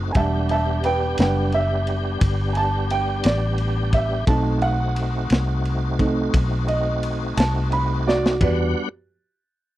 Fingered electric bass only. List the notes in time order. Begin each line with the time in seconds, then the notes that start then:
Already playing: F#1
0.15 E1
1.19 F#1
2.21 G1
3.25 A1
4.27 B1
5.31 C2
6.33 B1
7.37 C2
8.41 E2